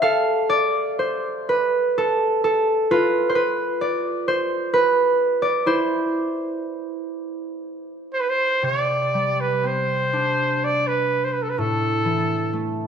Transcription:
0.00 1.97 A4 medium
0.00 0.99 C5 medium
0.00 1.68 F5 loud
0.50 2.34 D5 loud
0.99 1.55 C5 medium
1.49 2.91 B4 medium
1.98 2.44 A4 loud
2.44 4.64 A4 medium
2.91 5.43 F4 medium
2.91 3.35 B4 medium
3.29 3.41 C5 medium
3.35 4.34 B4 medium
3.81 5.42 D5 medium
4.28 4.80 C5 medium
4.74 5.73 B4 loud
5.42 7.27 D5 medium
5.66 8.27 E4 medium
5.66 8.08 C5 medium
8.13 8.22 C5 medium
8.20 8.31 B4 medium
8.29 8.66 C5 medium
8.63 11.63 C3 soft
8.63 9.42 D5 medium
9.14 11.63 G3 soft
9.41 9.68 B4 medium
9.63 12.63 C4 soft
9.63 10.66 C5 medium
10.13 12.87 D4 soft
10.64 10.89 D5 medium
10.87 11.26 B4 medium
11.24 11.34 C5 medium
11.33 11.44 B4 medium
11.43 11.51 A4 medium
11.50 11.60 B4 medium
11.58 12.87 A2 soft
11.58 12.73 A4 medium
12.05 12.87 E3 soft
12.53 12.87 A3 soft

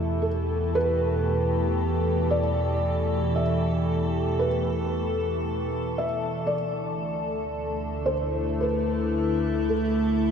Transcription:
0.00 6.48 E2 medium
0.00 8.46 B2 medium
0.00 6.53 E3 medium
0.00 10.31 A3 medium
0.00 0.97 E4 medium
0.00 6.55 G4 medium
0.00 10.31 A4 medium
0.00 0.25 E5 medium
0.22 0.76 A4 medium
0.75 2.38 B4 loud
2.31 3.40 D5 loud
3.36 4.45 E5 medium
4.39 6.04 B4 medium
5.98 6.54 E5 medium
6.47 8.13 D5 medium
6.51 10.31 D2 medium
6.51 10.31 D3 medium
7.17 10.31 A3 medium
7.17 10.31 E4 medium
8.06 8.63 C5 medium
8.61 9.71 B4 medium
9.69 10.31 A4 medium

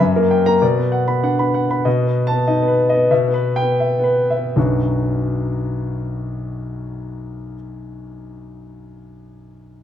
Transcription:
0.00 0.60 F#2 medium
0.00 0.24 E5 medium
0.16 0.40 A#3 medium
0.16 0.40 A#4 medium
0.31 0.56 G5 medium
0.46 0.62 A#3 medium
0.46 0.62 A#5 medium
0.62 1.82 B2 medium
0.62 0.87 D5 soft
0.77 1.02 B3 soft
0.77 1.02 B4 soft
0.92 1.17 F#5 medium
1.08 1.33 B3 soft
1.08 1.33 B5 medium
1.23 1.48 D4 medium
1.23 1.48 F#5 medium
1.39 1.64 B3 soft
1.39 1.64 B5 medium
1.54 1.79 F#5 medium
1.70 1.86 B3 soft
1.70 1.86 B5 medium
1.85 3.06 B2 medium
1.85 2.18 D#5 medium
2.01 2.26 B3 soft
2.07 2.39 B4 soft
2.27 2.60 A5 medium
2.32 2.56 B3 medium
2.47 2.72 D#4 medium
2.47 2.81 D#5 medium
2.62 2.88 B3 medium
2.68 3.02 B4 medium
2.89 3.11 D#5 medium
2.95 3.11 B3 medium
3.11 4.52 B2 medium
3.11 3.46 E5 medium
3.28 3.55 B3 medium
3.34 3.70 B4 medium
3.56 3.94 G5 medium
3.62 3.90 B3 medium
3.80 4.19 E5 medium
3.99 4.29 B3 medium
4.04 4.45 B4 medium
4.30 4.56 E5 medium
4.37 4.55 B3 soft
4.56 7.54 B1 soft
4.56 7.54 F#2 soft
4.56 7.55 F#3 soft
4.56 7.55 B3 soft
4.56 7.55 D4 soft
4.56 7.55 F#4 soft

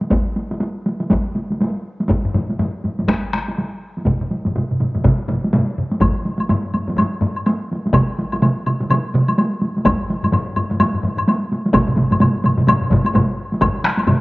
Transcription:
0.01 taiko high soft
0.10 taiko medium
0.10 taiko high medium
0.36 taiko high soft
0.51 taiko high soft
0.60 taiko high medium
0.86 taiko high medium
1.01 taiko high soft
1.10 taiko medium
1.10 taiko high medium
1.35 taiko high soft
1.50 taiko high soft
1.61 taiko high medium
2.00 taiko high soft
2.10 taiko medium
2.10 taiko low-mid medium
2.10 taiko high medium
2.25 taiko low-mid medium
2.34 taiko low-mid medium
2.34 taiko high soft
2.50 taiko high soft
2.59 taiko low-mid medium
2.59 taiko high medium
2.84 taiko low-mid medium
2.84 taiko high soft
2.99 taiko low-mid medium
2.99 taiko high soft
3.08 taiko rim medium
3.08 taiko medium
3.08 taiko high medium
3.33 taiko rim medium
3.33 taiko high soft
3.48 taiko high soft
3.58 taiko high medium
3.97 taiko high soft
4.06 taiko medium
4.06 taiko low-mid medium
4.06 taiko mid medium
4.06 taiko high medium
4.21 taiko low-mid medium
4.21 taiko mid medium
4.31 taiko high soft
4.45 taiko low-mid medium
4.45 taiko mid medium
4.45 taiko high soft
4.55 taiko low-mid medium
4.55 taiko mid medium
4.55 taiko high medium
4.71 taiko low-mid medium
4.71 taiko mid medium
4.80 taiko low-mid medium
4.80 taiko mid medium
4.80 taiko high soft
4.94 taiko low-mid medium
4.94 taiko mid medium
4.94 taiko high soft
5.04 taiko medium
5.04 taiko low-mid medium
5.04 taiko mid medium
5.04 taiko high medium
5.28 taiko low-mid medium
5.28 taiko mid medium
5.28 taiko high soft
5.44 taiko high soft
5.53 taiko low-mid medium
5.53 taiko mid medium
5.53 taiko high medium
5.78 taiko low-mid medium
5.78 taiko mid medium
5.92 taiko high soft
6.01 taiko medium
6.01 taiko low-mid medium
6.01 taiko high medium
6.01 high woodblock soft
6.25 taiko high soft
6.40 taiko high soft
6.40 high woodblock soft
6.49 taiko low-mid medium
6.49 taiko high medium
6.49 high woodblock soft
6.74 taiko low-mid medium
6.74 taiko high medium
6.74 high woodblock soft
6.88 taiko low-mid medium
6.88 taiko high soft
6.97 taiko low-mid medium
6.97 taiko high medium
6.97 high woodblock soft
7.21 taiko low-mid medium
7.21 taiko high soft
7.36 high woodblock soft
7.46 taiko high medium
7.46 high woodblock soft
7.72 taiko high soft
7.86 taiko high soft
7.93 taiko loud
7.93 taiko mid medium
7.93 taiko high medium
7.93 high woodblock soft
8.19 taiko high medium
8.32 taiko high medium
8.32 high woodblock soft
8.42 taiko mid medium
8.42 taiko high medium
8.42 high woodblock soft
8.66 taiko mid medium
8.66 taiko high medium
8.66 high woodblock soft
8.81 taiko mid medium
8.81 taiko high medium
8.90 taiko mid loud
8.90 taiko high medium
8.90 high woodblock soft
9.14 taiko mid loud
9.14 taiko high medium
9.28 taiko high soft
9.28 high woodblock soft
9.38 taiko high medium
9.38 high woodblock soft
9.62 taiko high soft
9.77 taiko high soft
9.85 taiko loud
9.85 taiko low-mid medium
9.85 taiko high medium
9.85 high woodblock medium
10.10 taiko high medium
10.23 taiko low-mid medium
10.23 taiko high medium
10.23 high woodblock soft
10.32 taiko low-mid loud
10.32 taiko high medium
10.32 high woodblock soft
10.56 taiko low-mid medium
10.56 taiko high medium
10.56 high woodblock soft
10.70 taiko low-mid medium
10.70 taiko high medium
10.80 taiko low-mid medium
10.80 taiko high medium
10.80 high woodblock medium
10.94 taiko low-mid medium
11.03 taiko low-mid medium
11.03 taiko high medium
11.17 taiko low-mid medium
11.17 high woodblock soft
11.28 taiko high medium
11.28 high woodblock soft
11.52 taiko high medium
11.66 taiko high medium
11.73 taiko loud
11.73 taiko low-mid medium
11.73 taiko mid medium
11.73 taiko high medium
11.73 high woodblock medium
11.88 taiko low-mid medium
11.88 taiko mid medium
11.97 taiko low-mid medium
11.97 taiko mid medium
11.97 taiko high medium
12.11 taiko low-mid medium
12.11 taiko mid medium
12.11 taiko high medium
12.11 high woodblock soft
12.20 taiko low-mid medium
12.20 taiko mid medium
12.20 taiko high medium
12.20 high woodblock soft
12.44 taiko low-mid medium
12.44 taiko mid medium
12.44 taiko high medium
12.44 high woodblock soft
12.58 taiko low-mid medium
12.58 taiko mid medium
12.58 taiko high medium
12.67 taiko low-mid loud
12.67 taiko mid loud
12.67 taiko high medium
12.67 high woodblock medium
12.81 taiko low-mid medium
12.81 taiko mid medium
12.90 taiko medium
12.90 taiko low-mid loud
12.90 taiko mid loud
12.90 taiko high medium
13.04 taiko high medium
13.04 high woodblock soft
13.14 taiko medium
13.14 taiko low-mid loud
13.14 taiko mid medium
13.14 taiko high medium
13.14 high woodblock soft
13.52 taiko high medium
13.61 taiko loud
13.61 taiko low-mid medium
13.61 taiko mid loud
13.61 taiko high medium
13.61 high woodblock medium
13.84 taiko rim medium
13.84 taiko high medium
13.97 taiko high medium
13.97 high woodblock soft
14.07 taiko low-mid loud
14.07 taiko mid loud
14.07 taiko high medium
14.07 high woodblock soft

